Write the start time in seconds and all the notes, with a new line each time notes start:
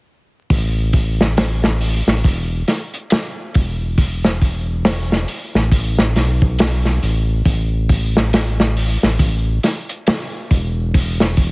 0.50 A1, kick, open hi-hat
0.93 kick, open hi-hat
1.21 snare
1.37 snare, open hi-hat
1.64 snare
1.81 open hi-hat
2.07 A1, snare
2.24 E1, kick, open hi-hat
2.68 snare, open hi-hat
2.94 closed hi-hat
3.10 snare, open hi-hat
3.54 E1, kick, open hi-hat
3.98 kick, open hi-hat
4.25 snare
4.42 kick, open hi-hat
4.85 snare, open hi-hat
5.12 snare
5.28 open hi-hat
5.54 A1, snare
5.72 kick, open hi-hat
5.99 snare
6.16 B1, snare, open hi-hat
6.42 kick
6.59 snare, open hi-hat
6.85 snare
7.02 A1, open hi-hat
7.45 A1, kick, open hi-hat
7.89 kick, open hi-hat
8.17 snare
8.33 snare, open hi-hat
8.60 snare
8.77 open hi-hat
9.03 A1, snare
9.19 A1, kick, open hi-hat
9.63 snare, open hi-hat
9.89 closed hi-hat
10.07 snare, open hi-hat
10.51 E1, kick, open hi-hat
10.94 kick, open hi-hat
11.20 snare
11.37 kick, open hi-hat